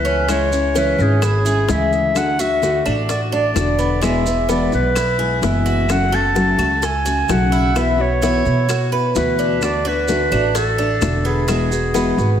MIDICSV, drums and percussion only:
0, 0, Header, 1, 2, 480
1, 0, Start_track
1, 0, Tempo, 466563
1, 296, Time_signature, 4, 2, 24, 8
1, 12757, End_track
2, 0, Start_track
2, 0, Title_t, "Drums"
2, 55, Note_on_c, 9, 70, 24
2, 158, Note_off_c, 9, 70, 0
2, 294, Note_on_c, 9, 60, 63
2, 298, Note_on_c, 9, 70, 65
2, 300, Note_on_c, 9, 75, 59
2, 397, Note_off_c, 9, 60, 0
2, 401, Note_off_c, 9, 70, 0
2, 403, Note_off_c, 9, 75, 0
2, 538, Note_on_c, 9, 70, 55
2, 641, Note_off_c, 9, 70, 0
2, 774, Note_on_c, 9, 60, 55
2, 778, Note_on_c, 9, 70, 62
2, 877, Note_off_c, 9, 60, 0
2, 881, Note_off_c, 9, 70, 0
2, 1013, Note_on_c, 9, 60, 33
2, 1023, Note_on_c, 9, 70, 24
2, 1116, Note_off_c, 9, 60, 0
2, 1126, Note_off_c, 9, 70, 0
2, 1257, Note_on_c, 9, 60, 68
2, 1257, Note_on_c, 9, 75, 61
2, 1258, Note_on_c, 9, 70, 69
2, 1360, Note_off_c, 9, 60, 0
2, 1360, Note_off_c, 9, 75, 0
2, 1361, Note_off_c, 9, 70, 0
2, 1497, Note_on_c, 9, 60, 31
2, 1499, Note_on_c, 9, 70, 57
2, 1600, Note_off_c, 9, 60, 0
2, 1602, Note_off_c, 9, 70, 0
2, 1734, Note_on_c, 9, 60, 66
2, 1734, Note_on_c, 9, 61, 74
2, 1738, Note_on_c, 9, 70, 67
2, 1837, Note_off_c, 9, 60, 0
2, 1837, Note_off_c, 9, 61, 0
2, 1841, Note_off_c, 9, 70, 0
2, 1981, Note_on_c, 9, 70, 26
2, 1984, Note_on_c, 9, 60, 32
2, 2084, Note_off_c, 9, 70, 0
2, 2086, Note_off_c, 9, 60, 0
2, 2220, Note_on_c, 9, 70, 67
2, 2221, Note_on_c, 9, 75, 57
2, 2222, Note_on_c, 9, 60, 58
2, 2323, Note_off_c, 9, 70, 0
2, 2324, Note_off_c, 9, 75, 0
2, 2325, Note_off_c, 9, 60, 0
2, 2462, Note_on_c, 9, 70, 63
2, 2565, Note_off_c, 9, 70, 0
2, 2705, Note_on_c, 9, 70, 60
2, 2706, Note_on_c, 9, 60, 56
2, 2808, Note_off_c, 9, 70, 0
2, 2809, Note_off_c, 9, 60, 0
2, 2942, Note_on_c, 9, 70, 26
2, 2946, Note_on_c, 9, 75, 64
2, 3045, Note_off_c, 9, 70, 0
2, 3049, Note_off_c, 9, 75, 0
2, 3181, Note_on_c, 9, 60, 64
2, 3184, Note_on_c, 9, 70, 69
2, 3283, Note_off_c, 9, 60, 0
2, 3287, Note_off_c, 9, 70, 0
2, 3661, Note_on_c, 9, 60, 59
2, 3661, Note_on_c, 9, 61, 77
2, 3665, Note_on_c, 9, 70, 70
2, 3665, Note_on_c, 9, 75, 53
2, 3764, Note_off_c, 9, 60, 0
2, 3764, Note_off_c, 9, 61, 0
2, 3768, Note_off_c, 9, 70, 0
2, 3768, Note_off_c, 9, 75, 0
2, 3906, Note_on_c, 9, 70, 26
2, 4008, Note_off_c, 9, 70, 0
2, 4141, Note_on_c, 9, 60, 63
2, 4144, Note_on_c, 9, 70, 68
2, 4144, Note_on_c, 9, 75, 61
2, 4244, Note_off_c, 9, 60, 0
2, 4247, Note_off_c, 9, 70, 0
2, 4247, Note_off_c, 9, 75, 0
2, 4384, Note_on_c, 9, 70, 59
2, 4487, Note_off_c, 9, 70, 0
2, 4622, Note_on_c, 9, 60, 53
2, 4622, Note_on_c, 9, 70, 57
2, 4724, Note_off_c, 9, 70, 0
2, 4725, Note_off_c, 9, 60, 0
2, 4859, Note_on_c, 9, 70, 25
2, 4866, Note_on_c, 9, 60, 31
2, 4962, Note_off_c, 9, 70, 0
2, 4969, Note_off_c, 9, 60, 0
2, 5098, Note_on_c, 9, 75, 61
2, 5104, Note_on_c, 9, 60, 65
2, 5104, Note_on_c, 9, 70, 66
2, 5200, Note_off_c, 9, 75, 0
2, 5207, Note_off_c, 9, 60, 0
2, 5207, Note_off_c, 9, 70, 0
2, 5345, Note_on_c, 9, 60, 30
2, 5448, Note_off_c, 9, 60, 0
2, 5583, Note_on_c, 9, 70, 67
2, 5587, Note_on_c, 9, 60, 60
2, 5587, Note_on_c, 9, 61, 78
2, 5686, Note_off_c, 9, 70, 0
2, 5689, Note_off_c, 9, 60, 0
2, 5689, Note_off_c, 9, 61, 0
2, 5825, Note_on_c, 9, 70, 28
2, 5830, Note_on_c, 9, 60, 34
2, 5928, Note_off_c, 9, 70, 0
2, 5933, Note_off_c, 9, 60, 0
2, 6060, Note_on_c, 9, 75, 58
2, 6061, Note_on_c, 9, 70, 62
2, 6067, Note_on_c, 9, 60, 67
2, 6163, Note_off_c, 9, 75, 0
2, 6164, Note_off_c, 9, 70, 0
2, 6170, Note_off_c, 9, 60, 0
2, 6541, Note_on_c, 9, 70, 60
2, 6544, Note_on_c, 9, 60, 57
2, 6644, Note_off_c, 9, 70, 0
2, 6647, Note_off_c, 9, 60, 0
2, 6783, Note_on_c, 9, 75, 69
2, 6784, Note_on_c, 9, 70, 26
2, 6885, Note_off_c, 9, 75, 0
2, 6887, Note_off_c, 9, 70, 0
2, 7021, Note_on_c, 9, 70, 69
2, 7027, Note_on_c, 9, 60, 71
2, 7124, Note_off_c, 9, 70, 0
2, 7130, Note_off_c, 9, 60, 0
2, 7260, Note_on_c, 9, 70, 60
2, 7363, Note_off_c, 9, 70, 0
2, 7499, Note_on_c, 9, 70, 69
2, 7502, Note_on_c, 9, 75, 57
2, 7505, Note_on_c, 9, 60, 64
2, 7505, Note_on_c, 9, 61, 75
2, 7601, Note_off_c, 9, 70, 0
2, 7605, Note_off_c, 9, 75, 0
2, 7608, Note_off_c, 9, 60, 0
2, 7608, Note_off_c, 9, 61, 0
2, 7746, Note_on_c, 9, 70, 28
2, 7849, Note_off_c, 9, 70, 0
2, 7980, Note_on_c, 9, 70, 66
2, 7983, Note_on_c, 9, 75, 65
2, 7984, Note_on_c, 9, 60, 64
2, 8083, Note_off_c, 9, 70, 0
2, 8086, Note_off_c, 9, 75, 0
2, 8087, Note_off_c, 9, 60, 0
2, 8459, Note_on_c, 9, 70, 58
2, 8469, Note_on_c, 9, 60, 63
2, 8562, Note_off_c, 9, 70, 0
2, 8572, Note_off_c, 9, 60, 0
2, 8699, Note_on_c, 9, 70, 25
2, 8706, Note_on_c, 9, 60, 31
2, 8801, Note_off_c, 9, 70, 0
2, 8809, Note_off_c, 9, 60, 0
2, 8941, Note_on_c, 9, 70, 72
2, 8943, Note_on_c, 9, 75, 65
2, 8950, Note_on_c, 9, 60, 67
2, 9044, Note_off_c, 9, 70, 0
2, 9046, Note_off_c, 9, 75, 0
2, 9053, Note_off_c, 9, 60, 0
2, 9187, Note_on_c, 9, 60, 32
2, 9290, Note_off_c, 9, 60, 0
2, 9416, Note_on_c, 9, 70, 73
2, 9427, Note_on_c, 9, 60, 60
2, 9427, Note_on_c, 9, 61, 77
2, 9519, Note_off_c, 9, 70, 0
2, 9530, Note_off_c, 9, 60, 0
2, 9530, Note_off_c, 9, 61, 0
2, 9656, Note_on_c, 9, 70, 29
2, 9664, Note_on_c, 9, 60, 35
2, 9759, Note_off_c, 9, 70, 0
2, 9767, Note_off_c, 9, 60, 0
2, 9895, Note_on_c, 9, 70, 66
2, 9902, Note_on_c, 9, 75, 58
2, 9904, Note_on_c, 9, 60, 64
2, 9998, Note_off_c, 9, 70, 0
2, 10005, Note_off_c, 9, 75, 0
2, 10007, Note_off_c, 9, 60, 0
2, 10370, Note_on_c, 9, 70, 63
2, 10380, Note_on_c, 9, 60, 54
2, 10473, Note_off_c, 9, 70, 0
2, 10483, Note_off_c, 9, 60, 0
2, 10612, Note_on_c, 9, 70, 27
2, 10620, Note_on_c, 9, 75, 66
2, 10715, Note_off_c, 9, 70, 0
2, 10723, Note_off_c, 9, 75, 0
2, 10855, Note_on_c, 9, 60, 68
2, 10855, Note_on_c, 9, 70, 67
2, 10958, Note_off_c, 9, 60, 0
2, 10958, Note_off_c, 9, 70, 0
2, 11332, Note_on_c, 9, 70, 68
2, 11337, Note_on_c, 9, 75, 55
2, 11341, Note_on_c, 9, 60, 64
2, 11341, Note_on_c, 9, 61, 77
2, 11435, Note_off_c, 9, 70, 0
2, 11440, Note_off_c, 9, 75, 0
2, 11443, Note_off_c, 9, 60, 0
2, 11443, Note_off_c, 9, 61, 0
2, 11569, Note_on_c, 9, 70, 27
2, 11672, Note_off_c, 9, 70, 0
2, 11812, Note_on_c, 9, 70, 67
2, 11816, Note_on_c, 9, 60, 67
2, 11818, Note_on_c, 9, 75, 63
2, 11915, Note_off_c, 9, 70, 0
2, 11918, Note_off_c, 9, 60, 0
2, 11921, Note_off_c, 9, 75, 0
2, 12056, Note_on_c, 9, 70, 59
2, 12159, Note_off_c, 9, 70, 0
2, 12291, Note_on_c, 9, 60, 56
2, 12297, Note_on_c, 9, 70, 60
2, 12393, Note_off_c, 9, 60, 0
2, 12400, Note_off_c, 9, 70, 0
2, 12535, Note_on_c, 9, 60, 31
2, 12536, Note_on_c, 9, 70, 26
2, 12638, Note_off_c, 9, 60, 0
2, 12639, Note_off_c, 9, 70, 0
2, 12757, End_track
0, 0, End_of_file